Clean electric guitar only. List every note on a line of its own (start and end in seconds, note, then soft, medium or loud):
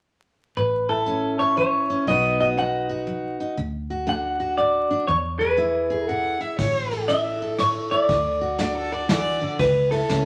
0.57 0.89 B4 medium
0.89 1.39 A4 medium
1.39 1.56 C#5 medium
1.58 2.08 C#5 medium
2.08 2.37 D#5 medium
2.41 2.46 D#5 medium
2.59 3.36 F#5 medium
4.09 4.57 F#5 medium
4.58 5.04 D5 medium
5.07 5.16 C#5 medium
5.39 6.07 B4 medium
6.07 6.36 A4 medium
7.08 7.55 E5 medium
7.60 7.68 C#5 medium
7.91 9.37 D5 medium
9.60 9.89 B4 medium
9.91 10.25 A4 medium